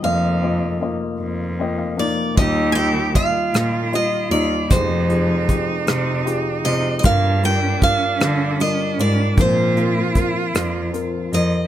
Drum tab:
HH |------|xxxxxx|xxxxxx|xxxxxx|
SD |------|---r--|---r--|---r--|
BD |------|o-o---|o-o---|o-o---|

HH |xxxxxx|
SD |---r--|
BD |o-o---|